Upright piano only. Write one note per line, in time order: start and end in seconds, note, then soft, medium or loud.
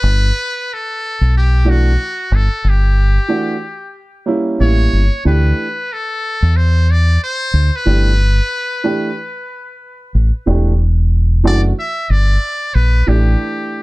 1.65 1.90 E3 medium
1.65 1.91 A3 medium
1.65 1.91 D4 medium
1.65 1.91 F#4 medium
3.28 3.54 E3 medium
3.28 3.54 A3 medium
3.28 3.54 D4 medium
3.28 3.54 F#4 medium
4.26 4.57 G3 medium
4.26 4.58 A#3 medium
4.26 4.58 C#4 medium
4.26 4.59 E4 medium
4.59 5.00 G3 medium
4.59 5.00 A#3 medium
4.59 5.00 C#4 medium
4.59 5.01 E4 medium
5.25 5.65 E3 medium
5.25 5.65 A3 medium
5.25 5.66 D4 medium
5.25 5.66 G4 medium
7.86 8.10 E3 medium
7.86 8.11 A3 medium
7.86 8.11 D4 medium
7.86 8.11 G4 medium
8.84 9.08 E3 medium
8.84 9.09 A3 medium
8.84 9.09 D4 medium
8.84 9.09 G4 medium
10.46 10.71 E3 medium
10.46 10.72 A3 medium
10.46 10.72 D4 medium
10.46 10.72 G4 medium
11.44 11.69 E3 medium
11.44 11.69 A3 medium
11.44 11.69 D4 medium
11.44 11.70 F#4 medium
13.07 13.83 E3 medium
13.07 13.83 A3 medium
13.07 13.83 D4 medium
13.07 13.83 G4 medium